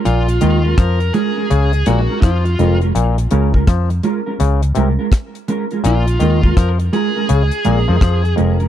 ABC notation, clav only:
X:1
M:4/4
L:1/16
Q:"Swing 16ths" 1/4=83
K:Bbm
V:1 name="Clav" clef=bass
B,,2 E,2 F,2 z2 D,2 B,, z F,2 F,,2 | B,,2 D,2 F,2 z2 D,2 C, z4 z | B,,2 E,2 F,2 z2 D, z B,, F, F,2 F,,2 |]